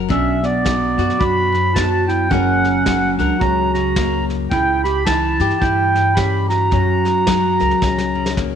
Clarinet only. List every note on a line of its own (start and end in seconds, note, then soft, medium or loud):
0.10 0.41 C#4 medium
0.42 1.16 B3 medium
1.19 1.71 F#4 medium
1.74 2.06 F#4 medium
2.07 2.29 E4 medium
2.30 3.15 C#4 medium
3.18 3.39 D4 medium
3.39 3.71 F#4 medium
3.73 4.25 F#4 medium
4.51 4.82 E4 medium
4.85 5.05 G4 medium
5.06 5.57 E4 medium
5.60 6.12 E4 medium
6.16 6.47 G4 medium
6.49 8.33 F#4 medium